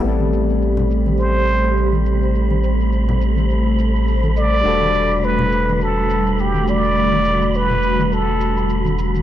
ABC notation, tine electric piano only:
X:1
M:4/4
L:1/8
Q:"Swing 16ths" 1/4=104
K:Ador
V:1 name="Tine electric piano"
[G,A,CA]8- | [G,A,CA]8 | [G,DFA]8- | [G,DFA]8 |]